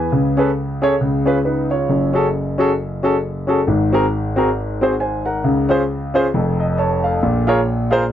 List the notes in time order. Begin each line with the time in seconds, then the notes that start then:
Already playing: B4 G#5
0.12 C#2 C#3
0.37 C#4 G#4 A4 B4
0.82 C#4 G#4 A4 C#5
1.01 C#2 C#3
1.26 C#4 F4 G#4 B4
1.45 D#4 B4
1.71 F4 C#5
1.89 F#1 F#2
2.13 C#4 F#4 G#4 A4
2.58 C#4 F#4 G#4 A4
3.03 C#4 F#4 G#4 A4
3.47 C#4 F#4 G#4 A4
3.67 G#1 G#2
3.93 C4 F#4 G#4 A#4
4.36 C4 F#4 G#4 A#4
4.81 C4 F#4 G#4 C5
5.00 C5 G#5
5.26 A#4 F#5
5.44 C#2 C#3
5.69 C#4 F4 G#4 C5
6.14 C#4 F4 G#4 C5
6.34 F1 F2
6.60 D#5
6.78 C#5 A5
7.04 A4 F5
7.23 A#1 A#2
7.47 F4 G#4 A#4 C#5
7.91 F4 G#4 A#4 C5